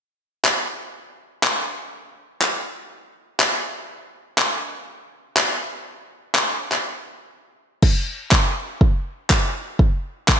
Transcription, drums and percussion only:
0.45 clap
1.43 clap
2.42 clap
3.40 clap
4.38 clap
5.37 clap
6.35 clap
6.72 clap
7.82 kick, crash
8.31 kick, clap
8.81 kick
9.30 kick, clap
9.79 kick
10.28 kick, clap

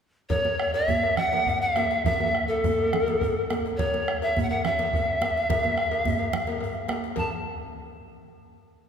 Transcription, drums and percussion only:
0.30 bombo low, cowbell, low conga, djembe bass
0.45 bombo rim, cowbell, high conga
0.60 bombo rim, djembe slap
0.74 cowbell, djembe slap
0.88 bombo low, djembe tone, high conga, djembe bass
1.03 cowbell
1.17 bombo rim, djembe slap, low conga
1.32 cowbell, djembe slap, high conga
1.46 bombo low, cowbell, djembe bass
1.76 bombo rim, cowbell, high conga, djembe tone
1.91 djembe slap
2.04 bombo low, cowbell, low conga, djembe bass
2.20 bombo rim, cowbell, high conga
2.35 bombo rim, djembe slap
2.49 cowbell, djembe slap
2.64 bombo low, djembe tone, high conga, djembe bass
2.78 cowbell
2.93 bombo rim, djembe slap, low conga
3.07 cowbell, djembe slap, high conga
3.21 bombo low, cowbell, djembe bass
3.50 bombo rim, cowbell, high conga, djembe tone
3.66 djembe slap
3.79 bombo low, cowbell, low conga, djembe bass
3.94 bombo rim, cowbell, high conga
4.08 bombo rim, djembe slap
4.22 cowbell, djembe slap
4.36 bombo low, high conga, djembe tone, djembe bass
4.51 cowbell
4.65 bombo rim, djembe slap, low conga
4.79 cowbell, djembe slap, high conga
4.93 bombo low, cowbell, djembe bass
5.21 bombo rim, cowbell, high conga, djembe tone
5.37 djembe slap
5.50 bombo low, cowbell, low conga, djembe bass
5.63 cowbell, high conga
5.78 bombo rim, high conga
5.91 cowbell, djembe slap, high conga
6.05 bombo low, high conga, djembe tone, djembe bass
6.19 cowbell, djembe slap
6.33 bombo rim, low conga
6.47 cowbell, djembe slap, high conga
6.61 bombo rim, cowbell, djembe slap, high conga, djembe bass
6.75 bombo rim, high conga
6.88 bombo rim, cowbell, high conga, djembe tone
7.04 djembe slap
7.16 bombo low, cowbell, low conga, djembe bass

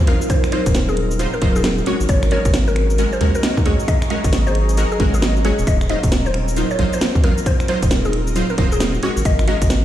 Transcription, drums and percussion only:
0.07 closed hi-hat
0.21 shaker
0.30 kick, closed hi-hat, shaker
0.44 finger snap, shaker
0.52 closed hi-hat
0.66 kick, closed hi-hat, shaker
0.75 snare, closed hi-hat, shaker
0.89 shaker
0.97 closed hi-hat
1.11 shaker
1.19 closed hi-hat, shaker
1.33 shaker
1.42 kick, closed hi-hat
1.56 shaker
1.64 snare, closed hi-hat, shaker
1.78 shaker
1.86 closed hi-hat
2.00 shaker
2.09 kick, closed hi-hat, shaker
2.23 finger snap, shaker
2.31 closed hi-hat
2.45 kick, closed hi-hat, shaker
2.54 snare, closed hi-hat, shaker
2.68 shaker
2.76 finger snap, closed hi-hat
2.90 shaker
2.98 closed hi-hat, shaker
3.13 shaker
3.21 kick, closed hi-hat
3.35 shaker
3.43 snare, closed hi-hat, shaker
3.57 kick, shaker
3.66 closed hi-hat
3.80 shaker
3.88 kick, closed hi-hat, shaker
4.02 finger snap, shaker
4.10 closed hi-hat
4.24 kick, closed hi-hat, shaker
4.33 snare, closed hi-hat, shaker
4.47 shaker
4.55 closed hi-hat
4.69 closed hi-hat, shaker
4.77 closed hi-hat, shaker
4.92 shaker
5.00 kick, closed hi-hat
5.14 shaker
5.22 snare, closed hi-hat, shaker
5.36 shaker
5.45 closed hi-hat
5.59 shaker
5.67 kick, closed hi-hat, shaker
5.81 finger snap, shaker
5.89 closed hi-hat
6.03 kick, closed hi-hat, shaker
6.12 snare, closed hi-hat, shaker
6.26 shaker
6.34 finger snap, closed hi-hat
6.48 shaker
6.56 closed hi-hat, shaker
6.70 shaker
6.79 kick, closed hi-hat
6.93 shaker
7.01 snare, closed hi-hat, shaker
7.15 kick, shaker
7.24 closed hi-hat
7.38 shaker
7.46 kick, closed hi-hat, shaker
7.60 finger snap, shaker
7.68 closed hi-hat
7.83 kick, closed hi-hat, shaker
7.91 snare, closed hi-hat, shaker
8.05 shaker
8.13 closed hi-hat
8.27 shaker
8.36 closed hi-hat, shaker
8.50 shaker
8.58 kick, closed hi-hat
8.72 shaker
8.80 snare, closed hi-hat, shaker
8.94 shaker
9.03 closed hi-hat
9.17 shaker
9.25 kick, closed hi-hat, shaker
9.39 finger snap, shaker
9.48 closed hi-hat
9.62 kick, closed hi-hat, shaker
9.70 snare, closed hi-hat, shaker

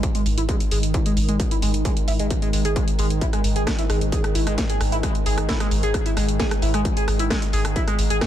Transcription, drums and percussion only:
0.03 kick, closed hi-hat
0.15 closed hi-hat
0.26 open hi-hat
0.38 closed hi-hat
0.49 kick, closed hi-hat
0.60 closed hi-hat
0.71 open hi-hat
0.83 closed hi-hat
0.94 kick, closed hi-hat
1.06 closed hi-hat
1.17 open hi-hat
1.29 closed hi-hat
1.40 kick, closed hi-hat
1.51 closed hi-hat
1.62 open hi-hat
1.74 closed hi-hat
1.85 kick, closed hi-hat
1.97 closed hi-hat
2.08 open hi-hat
2.19 closed hi-hat
2.31 kick, closed hi-hat
2.42 closed hi-hat
2.53 open hi-hat
2.65 closed hi-hat
2.76 kick, closed hi-hat
2.88 closed hi-hat
2.99 open hi-hat
3.10 closed hi-hat
3.21 kick, closed hi-hat
3.33 cross-stick, closed hi-hat
3.44 open hi-hat
3.56 closed hi-hat
3.67 kick, cross-stick, snare, closed hi-hat
3.79 closed hi-hat
3.90 cross-stick, open hi-hat
4.01 closed hi-hat
4.12 kick, closed hi-hat
4.24 cross-stick, closed hi-hat
4.35 open hi-hat
4.47 cross-stick, closed hi-hat
4.58 kick, snare, closed hi-hat
4.70 closed hi-hat
4.81 cross-stick, open hi-hat
4.92 closed hi-hat
5.03 kick, cross-stick, closed hi-hat
5.15 closed hi-hat
5.26 open hi-hat
5.38 cross-stick, closed hi-hat
5.49 kick, snare, closed hi-hat
5.60 cross-stick, closed hi-hat
5.71 open hi-hat
5.83 closed hi-hat
5.94 kick, cross-stick, closed hi-hat
6.06 closed hi-hat
6.17 cross-stick, open hi-hat
6.29 closed hi-hat
6.40 kick, snare, closed hi-hat
6.51 cross-stick, closed hi-hat
6.62 open hi-hat
6.74 cross-stick, closed hi-hat
6.85 kick, closed hi-hat
6.97 closed hi-hat
7.08 cross-stick, open hi-hat
7.19 closed hi-hat
7.30 kick, cross-stick, snare, closed hi-hat
7.42 closed hi-hat
7.53 open hi-hat
7.65 cross-stick, closed hi-hat
7.76 kick, closed hi-hat
7.88 cross-stick, closed hi-hat
7.99 open hi-hat
8.10 closed hi-hat
8.21 kick, cross-stick, snare, closed hi-hat

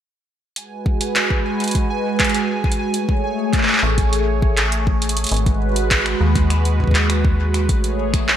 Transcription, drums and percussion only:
0.56 closed hi-hat
0.86 kick
1.01 closed hi-hat
1.16 clap, closed hi-hat
1.30 kick
1.60 closed hi-hat
1.64 closed hi-hat
1.68 closed hi-hat
1.71 closed hi-hat
1.75 kick, closed hi-hat
2.20 kick, clap, closed hi-hat
2.25 closed hi-hat
2.29 closed hi-hat
2.34 closed hi-hat
2.64 kick
2.72 closed hi-hat
2.94 closed hi-hat
3.09 kick
3.53 kick, clap, closed hi-hat
3.58 clap
3.63 clap
3.68 clap
3.73 clap
3.78 clap
3.98 kick, closed hi-hat
4.13 closed hi-hat
4.42 kick
4.57 clap, closed hi-hat
4.72 closed hi-hat
4.87 kick
5.02 closed hi-hat
5.09 closed hi-hat
5.17 closed hi-hat
5.24 closed hi-hat
5.27 closed hi-hat
5.29 closed hi-hat
5.32 closed hi-hat
5.34 closed hi-hat
5.37 closed hi-hat
5.46 kick, closed hi-hat
5.76 closed hi-hat
5.91 kick, clap, closed hi-hat
6.06 finger snap, closed hi-hat
6.35 kick, closed hi-hat
6.50 finger snap, closed hi-hat
6.65 closed hi-hat
6.80 kick
6.84 kick
6.87 kick
6.91 kick, clap, closed hi-hat
7.10 finger snap, closed hi-hat
7.25 kick
7.54 finger snap, closed hi-hat
7.69 kick, closed hi-hat
7.84 closed hi-hat
8.14 finger snap, kick, closed hi-hat
8.28 clap

